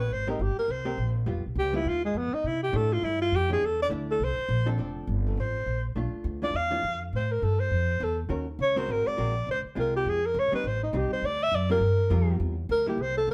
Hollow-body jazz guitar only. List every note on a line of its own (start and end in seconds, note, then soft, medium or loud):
0.27 0.38 G#3 medium
0.27 0.38 C4 medium
0.27 0.38 G4 medium
0.27 0.38 A#4 medium
0.85 0.96 G#3 medium
0.85 0.96 C4 medium
0.85 0.96 G4 medium
0.85 0.97 A#4 medium
1.26 1.42 G3 medium
1.26 1.43 B3 medium
1.26 1.43 F4 medium
1.73 1.84 G3 medium
1.73 1.84 B3 medium
1.73 1.85 F4 medium
2.73 3.16 E3 medium
2.73 3.17 A3 medium
2.73 3.17 D4 medium
3.49 3.60 E3 medium
3.49 3.60 A3 medium
3.49 3.61 D4 medium
3.90 4.19 E3 medium
3.90 4.20 A3 medium
3.90 4.20 D4 medium
4.66 4.77 F3 medium
4.66 4.77 C4 medium
4.66 4.77 D4 medium
4.66 4.77 A4 medium
4.78 5.59 F3 medium
4.78 5.59 C4 medium
4.78 5.59 D4 medium
4.78 5.60 A4 medium
5.96 6.39 A3 medium
5.96 6.39 D4 medium
5.96 6.40 F4 medium
6.42 6.53 E3 medium
6.42 6.53 G#3 medium
6.42 6.53 D4 medium
6.42 6.53 F4 medium
6.71 6.82 E3 medium
6.71 6.82 G#3 medium
6.71 6.82 D4 medium
6.71 6.82 F4 medium
8.29 8.45 D#3 medium
8.29 8.45 C#4 medium
8.29 8.45 F#4 medium
8.29 8.46 A#4 medium
8.76 9.15 G#3 medium
8.76 9.15 C4 medium
8.76 9.16 F#4 medium
8.76 9.16 A#4 medium
9.17 9.33 G#3 medium
9.17 9.33 C4 medium
9.17 9.33 F#4 medium
9.17 9.34 A#4 medium
9.75 10.19 G#3 medium
9.75 10.19 C4 medium
9.75 10.20 F4 medium
10.52 10.63 G3 medium
10.52 10.63 C4 medium
10.52 10.63 D#4 medium
10.93 11.23 G3 medium
10.93 11.23 C4 medium
10.93 11.23 D#4 medium
11.70 11.80 G3 medium
11.70 11.80 C4 medium
11.70 11.80 F4 medium
11.70 11.81 A#4 medium
12.10 12.54 G3 medium
12.10 12.54 C4 medium
12.10 12.54 F4 medium
12.10 12.54 A#4 medium
12.86 12.97 G3 medium
12.86 12.97 A#3 medium
12.86 12.98 E4 medium